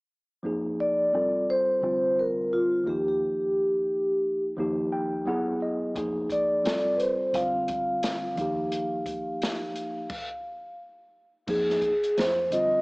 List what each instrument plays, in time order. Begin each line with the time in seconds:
0.43 fingered electric bass F1, tine electric piano F3 A#3 D#4 G#4
0.80 vibraphone D5
1.13 fingered electric bass F1, tine electric piano G3 C4 F4 A4
1.50 vibraphone C5
1.81 fingered electric bass F1, tine electric piano D3 G3 C4 F4
2.19 vibraphone A#4
2.53 vibraphone F4
2.84 fingered electric bass D#2, tine electric piano F3 A#3 D#4, vibraphone G4
2.89 tine electric piano G4
3.08 vibraphone G4
4.57 fingered electric bass D#2, tine electric piano F3 A#3 D#4 G4
4.92 tine electric piano G5
5.25 fingered electric bass F#1, tine electric piano F#3 B3 E4 G#4 F#5
5.62 tine electric piano D#5
5.95 fingered electric bass F1, tine electric piano F3 A#3 D#4 G#4, kick, closed hi-hat
6.30 vibraphone D5, kick, closed hi-hat
6.64 fingered electric bass F1, tine electric piano G3 C4 F4 A4, snare, closed hi-hat
6.96 vibraphone B4, closed hi-hat
7.00 vibraphone C5
7.33 fingered electric bass F1, tine electric piano D3 G3 C4 F4, vibraphone F5, kick, closed hi-hat
7.68 kick, closed hi-hat
8.03 snare, closed hi-hat
8.35 fingered electric bass D#2, tine electric piano F3 A#3 D#4, kick, closed hi-hat
8.41 tine electric piano G4
8.72 closed hi-hat
9.06 kick, closed hi-hat
9.42 snare, closed hi-hat
9.76 closed hi-hat
10.10 kick, crash
11.47 fingered electric bass F2, tine electric piano F3 A#3 D#4 G#4, vibraphone G#4, kick, crash
11.70 snare
11.82 vibraphone G#4, kick, closed hi-hat
12.03 closed hi-hat
12.17 fingered electric bass F2, vibraphone C5, snare, closed hi-hat
12.50 tine electric piano D3 G3 C4 F4, vibraphone D#5, closed hi-hat